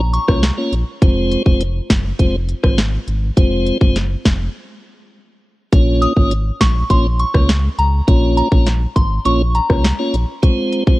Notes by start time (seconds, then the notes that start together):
Already playing: A#1
0.13 C#6, closed hi-hat
0.28 C2 A#3 C#4 F4 C#5, kick, cross-stick
0.43 snare, closed hi-hat
0.57 A#3 C#4 F4 C#5
0.72 A#1, closed hi-hat
1.02 F1 G#3 C4 F4 C5, kick, closed hi-hat
1.31 closed hi-hat
1.46 F1 G#3 C4 F4 C5, kick
1.61 closed hi-hat
1.90 F#1, kick, snare, closed hi-hat
2.19 F1 G#3 C4 F4 C5, kick, closed hi-hat
2.49 closed hi-hat
2.63 G#1 G#3 C4 F4 C5, kick, cross-stick
2.78 snare, closed hi-hat
3.08 G#1, closed hi-hat
3.37 F1 G#3 C4 F4 C5, kick, closed hi-hat
3.67 closed hi-hat
3.81 F#1 G#3 C4 F4 C5, kick
3.96 snare, closed hi-hat
4.25 F1, kick, snare, closed hi-hat
5.72 A#1 A#3 C#4 F4 C#5, kick, closed hi-hat
6.02 D#6, closed hi-hat
6.16 G#1 A#3 C#4 F4 C#5, kick
6.31 closed hi-hat
6.61 A#1 C#6, kick, snare, closed hi-hat
6.90 A#1 A#3 C#4 F4 C#5 C6, kick, closed hi-hat
7.19 C#6, closed hi-hat
7.34 C#2 A#3 C#4 F4 C#5, kick, cross-stick
7.49 snare, closed hi-hat
7.79 C#2 A#5, closed hi-hat
8.07 A#1 A#3 C#4 F4 C#5, kick, closed hi-hat
8.37 A#5, closed hi-hat
8.52 A#1 A#3 C#4 F4 C#5, kick
8.67 snare, closed hi-hat
8.96 G#1 C6, kick, closed hi-hat
9.25 A#1 A#3 C#4 F4 C#5 C#6, closed hi-hat
9.55 A#5, closed hi-hat
9.69 C2 A#3 C#4 F4 C#5, kick, cross-stick
9.84 snare, closed hi-hat
9.99 A#3 C#4 F4 C#5
10.14 A#1, closed hi-hat
10.43 G#3 C4 F4 C5, kick, closed hi-hat
10.73 closed hi-hat
10.87 G#3 C4 F4 C5, kick